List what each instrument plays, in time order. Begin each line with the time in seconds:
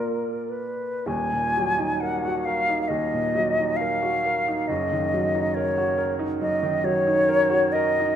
Already playing: grand piano A#2 A#3 F4 D5, flute A#4
0.50 flute B4
1.06 grand piano D#1 D#2, flute G#5
1.33 grand piano A#2
1.57 grand piano F#3
1.78 grand piano D#4
2.01 grand piano A#4, flute F#5
2.25 grand piano F#4
2.45 grand piano A#4, flute F5
2.69 grand piano D#4
2.82 flute F5
2.88 grand piano D#2, flute D#5
3.14 grand piano A#2
3.35 grand piano F#3
3.58 grand piano D#4
3.77 flute F5
3.81 grand piano A#4
4.02 grand piano F#4
4.26 grand piano A#4
4.48 grand piano D#4
4.68 grand piano F#1 F#2, flute D#5
4.92 grand piano D#3
5.14 grand piano F#3
5.35 grand piano D#4
5.54 grand piano A#4, flute C#5
5.78 grand piano F#4
5.98 grand piano A#4
6.19 grand piano D#4
6.41 grand piano F#2, flute D#5
6.63 grand piano D#3
6.84 grand piano F#3, flute C#5
7.07 grand piano D#4
7.28 grand piano A#4
7.50 grand piano F#4
7.72 grand piano A#4, flute D#5
7.99 grand piano D#4